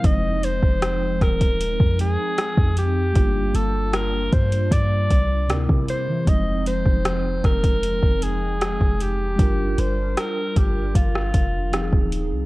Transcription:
<<
  \new Staff \with { instrumentName = "Alto saxophone" } { \time 4/4 \key f \dorian \tempo 4 = 77 ees''8 c''4 bes'4 aes'4 g'8~ | g'8 a'8 bes'8 c''8 d''4 r8 c''8 | ees''8 c''4 bes'4 aes'4 g'8~ | g'8 c''8 bes'8 g'8 f'4. r8 | }
  \new Staff \with { instrumentName = "Tine electric piano" } { \time 4/4 \key f \dorian <f aes c' ees'>1 | <g bes d' f'>2. <c c' d' e' bes'>4 | <f aes c' ees'>1 | <g d' f' bes'>2. <f c' ees' g' aes'>4 | }
  \new Staff \with { instrumentName = "Analog synth pad" } { \time 4/4 \key f \dorian <f aes c' ees'>1 | <g bes d' f'>2. <c bes e'>4 | <f aes c' ees'>1 | <g d' f' bes'>2. <f c' ees' aes'>4 | }
  \new Staff \with { instrumentName = "808-style bass" } { \clef bass \time 4/4 \key f \dorian f,,8. f,,8. ees,,8. f,8 r8 f,8. | g,,8 g,,4 g,8 g,8 c,8 d,16 c8 e16 | f,,8. f,,8. f,,8. f,,4 f,,8. | g,,8 g,,8 r8 g,,8 g,,8 f,,8. ees,,8 c,16 | }
  \new DrumStaff \with { instrumentName = "Drums" } \drummode { \time 4/4 <hh bd>8 hh16 bd16 <hh ss>8 <hh bd ss>16 <hh bd>16 hh16 bd16 hh8 <hh ss>16 bd16 hh8 | <hh bd>8 hh8 <hh ss>8 <hh bd>16 hh16 <hh bd>8 <hh bd>8 <hh ss>16 bd16 hh8 | <hh bd>8 hh16 bd16 <hh ss>8 <hh bd ss>16 <hh bd>16 hh16 bd16 hh8 <hh ss>16 bd16 hh8 | <hh bd>8 hh8 <hh ss>8 <hh bd>8 <hh bd>16 ss16 <hh bd>8 <hh ss>16 bd16 hh8 | }
>>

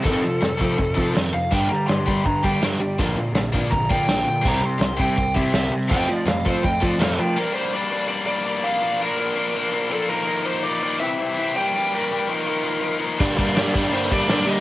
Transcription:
<<
  \new Staff \with { instrumentName = "String machine" } { \time 4/4 \key g \minor \tempo 4 = 164 r1 | r1 | r1 | r1 |
r1 | r1 | r1 | r1 |
r1 | <bes' d'' g'' d'''>1 | }
  \new Staff \with { instrumentName = "Lead electric guitar" } { \time 4/4 \key g \minor << { a'2. r8 f''8 | g''8 bes''8 c'''4 bes''8 g''8 r4 | r2 bes''8 g''4 g''8 | bes''8 c'''4 g''4 e''4 r8 |
g''8 d''8 f''8 c''8 g''8 d''8 f''8 g''8 | r1 | r1 | r1 |
r1 | r1 | } \\ { r1 | r1 | r1 | r1 |
r2. a'8 bes'8~ | bes'8 c''8 d''4 d''8 d''4 f''8~ | f''8 bes'2~ bes'8 a'8 bes'8~ | bes'8 c''8 d''4 e''8 e''4 g''8~ |
g''8 bes'2. r8 | d''4 d''4 c''8 d''4 ees''8 | } >> }
  \new Staff \with { instrumentName = "Overdriven electric guitar" } { \time 4/4 \key g \minor <f c' ees' a'>8 r4 <f c' ees' a'>8 r8 <f c' ees' a'>8 r4 | <bes d' g'>8 r4 <bes d' g'>8 r8 <bes d' g'>8 r4 | <f bes d'>8 r4 <f bes d'>8 r8 <f bes d'>8 r4 | <g c' e' g'>8 r4 <g c' e' g'>8 r8 <g c' e' g'>8 r4 |
<f c' f' a'>8 r4 <f c' f' a'>8 r8 <f c' f' a'>8 r4 | <g bes d'>8 <g bes d'>8 <g bes d'>8 <g bes d'>8 <g bes d'>8 <g bes d'>8 <g bes d'>8 <g bes d'>8 | <f bes d'>8 <f bes d'>8 <f bes d'>8 <f bes d'>8 <f bes d'>8 <f bes d'>8 <f bes d'>8 <f bes ees'>8 | <f bes ees'>8 <f bes ees'>8 <f bes ees'>8 <f bes ees'>8 <e c' e' g'>8 <e c' e' g'>8 <e c' e' g'>8 <g bes d' g'>8 |
<g bes d' g'>8 <g bes d' g'>8 <g bes d' g'>8 <f bes ees'>8 <f bes ees'>8 <f bes ees'>8 <f bes ees'>8 <f bes ees'>8 | <g bes d'>8 <g bes d'>8 <g bes d'>8 <g bes d'>8 <g bes d'>8 <g bes d'>8 <g bes d'>8 <g bes d'>8 | }
  \new Staff \with { instrumentName = "Overdriven electric guitar" } { \clef bass \time 4/4 \key g \minor <f, c ees>8 <f, c>8 <f, c>8 <f, c>8 <f, c>8 <f, c>8 <f, c ees>8 <f, c>8 | <g, d g>8 <g, d>8 <g, d>8 <g, d>8 <g, d>8 <g, d>8 <g, d g>8 <g, d>8 | <bes, d f>8 <bes, d>8 <bes, d>8 <bes, d>8 <bes, d>8 <bes, d>8 <bes, d f>8 <bes, d>8 | <c g c'>8 <c g>8 <c g>8 <c g>8 <c g>8 <c g>8 <c g c'>8 <c g>8 |
<f a c'>8 <f a>8 <f a>8 <f a>8 <f a>8 <f a>8 <f a c'>8 <f a>8 | r1 | r1 | r1 |
r1 | <g, d g bes d'>8 <g, d g bes d'>8 <g, d g bes d'>8 <g, d g bes d'>8 <g, d g bes d'>8 <g, d g bes d'>8 <g, d g bes d'>8 <g, d g bes d'>8 | }
  \new Staff \with { instrumentName = "Picked electric bass" } { \clef bass \time 4/4 \key g \minor f,8 f8 f,8 f8 f,8 f8 f,8 f,8 | g,8 g8 g,8 g8 g,8 g8 g,8 g8 | bes,,8 bes,8 bes,,8 bes,8 bes,,8 bes,8 bes,,8 bes,8 | c,8 c8 c,8 c8 c,8 c8 c,8 c8 |
f,8 f8 f,8 f8 f,8 f8 f,8 f8 | r1 | r1 | r1 |
r1 | g,8 g8 g,8 g16 r16 g,8 g8 g,8 g8 | }
  \new DrumStaff \with { instrumentName = "Drums" } \drummode { \time 4/4 <hho bd>8 <hho sn>8 <hho sn>8 <hho bd>8 <hho bd>8 <hho bd>8 <hho sn>8 hho8 | <hho bd>8 <hho sn>8 <hho sn>8 <hho bd>8 <hho bd>8 <hho bd>8 <hho sn>8 hho8 | <hho bd>8 hho8 <hho sn>8 <hho bd>8 <hho bd>8 <hho bd>8 <hho sn>8 hho8 | <hho bd>8 hho8 <hho sn>8 <hho bd>8 <hho bd>8 <hho bd>8 <hho sn>8 hho8 |
<hho bd>8 <hho sn>8 <hho sn>8 <hho bd>8 <hho bd>8 <hho bd>8 <hho sn>8 hho8 | r4 r4 r4 r4 | r4 r4 r4 r4 | r4 r4 r4 r4 |
r4 r4 r4 r4 | <cymc bd>8 <cymc bd>8 <cymc sn>8 <cymc bd>16 sn16 cymc8 <cymc bd>8 <cymc sn>8 cymc8 | }
>>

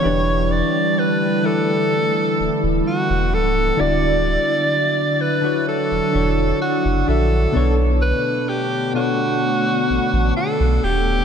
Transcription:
<<
  \new Staff \with { instrumentName = "Alto saxophone" } { \time 4/4 \key b \minor \tempo 4 = 64 cis''8 d''8 b'8 a'4 r8 fis'8 a'8 | d''4. b'8 a'4 fis'8 a'8 | r8 b'8 g'8 fis'4. a'8 g'8 | }
  \new Staff \with { instrumentName = "Synth keys" } { \time 4/4 \key b \minor <e d' e' g' b'>4. <e g e' b' d''>4.~ <e g e' b' d''>16 r8. | <d d' e' fis' d''>4.~ <d d' e' fis' d''>16 <d d' e' fis' cis''>8. <d d' e' fis' cis''>4 <d d' e' fis' e''>8 | <b, b d' a' cis''>4. <b, b d' a' cis''>4.~ <b, b d' a' cis''>16 r8. | }
  \new Staff \with { instrumentName = "Ambient pad" } { \time 4/4 \key b \minor << { <d e'>1~ | <d e'>1 | <d d'>1 | } \\ { <g a>2 b2 | <fis d'>1 | <a b>1 | } >> }
  \new Staff \with { instrumentName = "Sub bass" } { \clef bass \time 4/4 \key b \minor e,,8. r4. r16 d,,16 d,,16 r16 e,,16 cis,,8 | d,,8. r4. e,,16 e,,8 r16 fis,,16 ais,,8 | b,,8. r4. r16 a,,16 a,,16 r16 b,,16 dis,,8 | }
>>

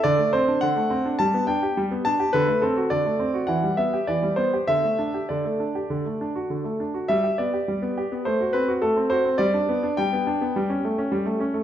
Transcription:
<<
  \new Staff \with { instrumentName = "Grand piano" } { \time 4/4 \key g \major \tempo 4 = 104 d''8 c''8 fis''4 a''8 g''4 a''8 | b'8 a'8 d''4 fis''8 e''8 d''8 c''8 | e''4 d''2~ d''8 r8 | e''8 d''4. c''8 b'8 a'8 c''8 |
d''4 g''2~ g''8 r8 | }
  \new Staff \with { instrumentName = "Grand piano" } { \time 4/4 \key g \major d16 a16 c'16 d'16 d16 a16 c'16 d'16 g16 b16 d'16 g'16 g16 b16 d'16 g'16 | d16 a16 c'16 fis'16 d16 a16 c'16 fis'16 e16 g16 b16 g'16 e16 g16 b16 g'16 | d16 a16 d'16 g'16 d16 a16 d'16 g'16 d16 a16 d'16 fis'16 d16 a16 d'16 fis'16 | g16 g'16 b16 g'16 g16 b16 g'16 b16 a16 fis'16 c'16 fis'16 a16 c'16 fis'16 c'16 |
g16 d'16 b16 d'16 g16 b16 d'16 b16 g16 cis'16 a16 cis'16 g16 a16 cis'16 a16 | }
>>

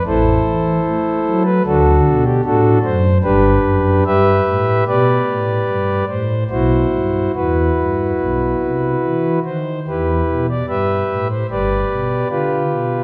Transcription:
<<
  \new Staff \with { instrumentName = "Pipe organ" } { \time 4/4 \key g \major \tempo 4 = 74 <e' a' c''>4.~ <e' a' c''>16 b'16 <d' fis' a'>8. g'16 <d' fis' a'>8 c''8 | <d' g' b'>4 <g' b' e''>4 <g' b' d''>4. c''8 | <e' fis' c''>4 <e' fis' b'>2~ <e' fis' b'>8 c''8 | <e' g' b'>8. d''16 <g' b' e''>8. c''16 <g' b' d''>4 <f' g' b'>4 | }
  \new Staff \with { instrumentName = "Pipe organ" } { \clef bass \time 4/4 \key g \major <a,, a,>8 e8 a8 fis8 <d, d>8 b,8 a,8 fis,8 | <g,, g,>8 fis,8 g,8 a,8 b,8 a,8 g,8 a,8 | <b,, b,>8 g,8 e,8 g,8 <b,, b,>8 c8 e8 dis8 | <e, e>8 b,8 g,8 a,8 <g,, g,>8 b,8 d8 b,8 | }
>>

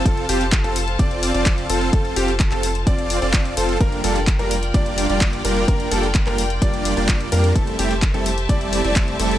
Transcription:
<<
  \new Staff \with { instrumentName = "String section" } { \time 4/4 \key f \major \tempo 4 = 128 <f' a' c'' a''>1~ | <f' a' c'' a''>1 | <f' bes' d'' g''>1~ | <f' bes' d'' g''>1 |
<g' c'' e'' a''>1 | }
  \new Staff \with { instrumentName = "Grand piano" } { \time 4/4 \key f \major a'8 g'16 r8 a'16 r8 d''8. d''8. a'8 | a'8 g'16 r8 a'16 r8 d''8. d''8. a'8 | bes'8 a'16 r8 bes'16 r8 d''8. d''8. bes'8 | bes'8 a'16 r8 bes'16 r8 d''8. d''8. bes'8 |
a'8 g'16 r8 a'16 r8 d''8. d''8. a'8 | }
  \new Staff \with { instrumentName = "Supersaw synth" } { \time 4/4 \key f \major <c' f' a'>8 <c' f' g'>16 r8 <c' f' a'>16 r8 <c' f' d''>8. <c' f' d''>8. <c' f' a'>8 | <c' f' a'>8 <c' f' g'>16 r8 <c' f' a'>16 r8 <c' f' d''>8. <c' f' d''>8. <c' f' a'>8 | <g bes d' f' bes'>8 <g bes d' f' a'>16 r8 <g bes d' f' bes'>16 r8 <g bes d' f' d''>8. <g bes d' f' d''>8. <g bes d' f' bes'>8 | <g bes d' f' bes'>8 <g bes d' f' a'>16 r8 <g bes d' f' bes'>16 r8 <g bes d' f' d''>8. <g bes d' f' d''>8. <g bes d' f' bes'>8 |
<g a c' e' a'>8 <g a c' e' g'>16 r8 <g a c' e' a'>16 r8 <g a c' e' d''>8. <g a c' e' d''>8. <g a c' e' a'>8 | }
  \new Staff \with { instrumentName = "Sub bass" } { \clef bass \time 4/4 \key f \major f,,8 f,,8. f,,8. f,,8. f,,8. f,,8 | f,,8 f,,8. f,,8. f,,8. f,,8. f,,8 | f,,8 f,,8. f,,8. f,,8. f,,8. f,,8 | f,,8 f,,8. f,,8. f,,8. f,,8. f,8 |
f,,8 f,,8. f,,8. f,,8. f,,8. f,,8 | }
  \new DrumStaff \with { instrumentName = "Drums" } \drummode { \time 4/4 <hh bd>16 hh16 hho16 hh16 <hc hh bd>16 hh16 hho16 hh16 <hh bd>16 hh16 hho16 hh16 <hc hh bd>16 hh16 hho16 hh16 | <hh bd>16 hh16 hho16 hh16 <hc hh bd>16 <hc hh>16 hho16 hh16 <hh bd>16 hh16 hho16 hh16 <hc hh bd>16 hh16 hho16 hh16 | <hh bd>16 hh16 hho16 hh16 <hc hh bd>16 hh16 hho16 hh16 <hh bd>16 hh16 hho16 hh16 <hc hh bd>16 hh16 hho16 hh16 | <hh bd>16 hh16 hho16 hh16 <hc hh bd>16 <hc hh>16 hho16 hh16 <hh bd>16 hh16 hho16 hh16 <hc hh bd>16 hh16 hho16 hh16 |
<hh bd>16 hh16 hho16 hh16 <hc hh bd>16 hh16 hho16 hh16 <hh bd>16 hh16 hho16 hh16 <hc hh bd>16 hh16 hho16 hh16 | }
>>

